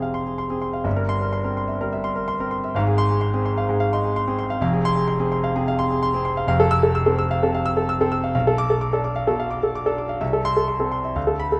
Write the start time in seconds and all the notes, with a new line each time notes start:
Already playing: F1 F2 C3 C4 G#4 F5 C6
0.02 F5
0.14 C6
0.26 G#4
0.38 C6
0.50 C4 G#4
0.62 C6
0.73 F5
0.84 G1 G2 E5
0.96 A#4
1.09 C6
1.21 A#4
1.33 C6
1.44 C4 A#4
1.57 C6
1.67 E5
1.81 G3 A#4
1.93 E5
2.04 C6
2.16 A#4
2.28 C6
2.40 C4 A#4
2.51 C6
2.64 E5
2.75 G#1 G#2 F5
2.87 G#4
2.98 C6
3.10 G#4
3.21 C6
3.34 C4 G#4
3.45 C6
3.58 F5
3.69 G#2 G#4
3.80 F5
3.93 D#4 C6
4.04 G#4
4.16 C6
4.28 C4 G#4
4.39 C6
4.50 F5
4.61 F1 F2 F5
4.73 G#4
4.85 C6
4.96 G#4
5.08 C6
5.20 C4 G#4
5.32 C6
5.44 F5
5.55 C3 G#4
5.68 F5
5.79 C6
5.91 G#4
6.03 C6
6.14 C4 G#4
6.25 C6
6.37 F5
6.47 F1 F2 F5
6.60 A4
6.71 E6
6.83 A4
6.95 E6
7.06 C4 A4
7.19 E6
7.31 F5
7.43 C3 A4
7.54 F5
7.66 E6
7.77 A4
7.89 E6
8.01 C4 A4
8.12 E6
8.24 F5
8.35 B1 F5
8.47 A4
8.58 D6
8.70 A4
8.81 D6
8.93 D4 A4
9.04 D6
9.16 F5
9.27 B2 A4
9.39 F5
9.50 D6
9.63 A4
9.75 D6
9.86 D4 A4
9.98 D6
10.09 F5
10.21 C2 E5
10.33 A4
10.45 C6
10.57 A4
10.68 C6
10.80 C4 A4
10.92 C6
11.04 E5
11.16 D2 F5
11.27 A4
11.40 B5
11.52 A4